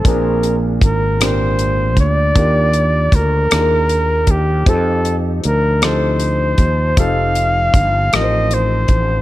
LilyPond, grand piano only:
\new Staff \with { instrumentName = "Grand piano" } { \time 6/8 \key f \dorian \tempo 4. = 52 <bes, bes c' d' aes'>4 r8 <bes, bes c' d' g'>4 r8 | <ees bes d' f' g'>4 r8 <ees bes d' f' aes' bes'>4 r8 | <f c' ees' g' a'>4 r8 <f c' ees' g' a'>4 r8 | <f c' ees' g' a'>4 r8 <f c' ees' g' bes' c''>4 r8 | }